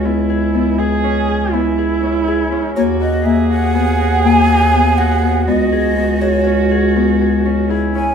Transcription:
X:1
M:11/8
L:1/8
Q:1/4=122
K:C#dor
V:1 name="Flute"
z8 z3 | c d e f3 g3 f2 | d3 c2 z4 z g |]
V:2 name="Cello"
E3 G3 E4- E | F2 G8- G | F8- F E2 |]
V:3 name="Harp"
B, G B, G C G B, G C G C | A, F A, F B, F A, F B, F B, | B, G B, G C G B, G C G C |]
V:4 name="Bass clarinet" clef=bass
C,,8- C,,3 | D,,8- D,,3 | C,,8- C,,3 |]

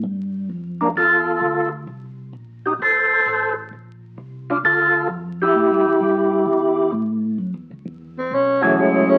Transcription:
X:1
M:4/4
L:1/8
Q:"Swing" 1/4=131
K:Aphr
V:1 name="Tonewheel organ"
z3 [B,D] [FA]3 z | z3 [_EG] [Ac]3 z | z3 [DF] [FA]2 z [EG]- | [EG]6 z2 |
[K:F#m] z4 z [F,A,CEG]3 |]
V:2 name="Tenor saxophone"
z8 | z8 | z8 | z8 |
[K:F#m] z3 ^B, C E, G, C |]
V:3 name="Tonewheel organ" clef=bass
G,,2 F,,2 E,,2 D,,2 | C,,2 B,,,2 F,,,2 A,,,2 | B,,,2 C,,2 D,,2 F,,2 | (3A,, G,, E,, G,,2 E,,2 A,,2 |
[K:F#m] (3F,, E,, C,, E,,2 B,,,2 C,,2 |]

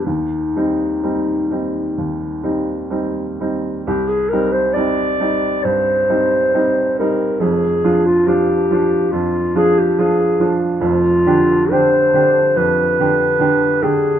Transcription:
X:1
M:4/4
L:1/16
Q:1/4=68
K:Cm
V:1 name="Clarinet"
E12 z4 | G A B c d4 c6 B2 | A3 F G4 F2 A G A3 z | F4 c4 =B6 A2 |]
V:2 name="Grand piano"
E,,2 [G,CE]2 [G,CE]2 [G,CE]2 E,,2 [G,CE]2 [G,CE]2 [G,CE]2 | C,,2 [G,CE]2 [G,CE]2 [G,CE]2 G,,2 [G,CE]2 [G,CE]2 [G,CE]2 | [F,,,F,,]2 [F,DF]2 [F,DF]2 [F,DF]2 F,,2 [F,DF]2 [F,DF]2 [F,DF]2 | [F,,,F,,]2 [D,DG]2 [D,DG]2 [D,DG]2 F,,2 [D,DG]2 [D,DG]2 [D,DG]2 |]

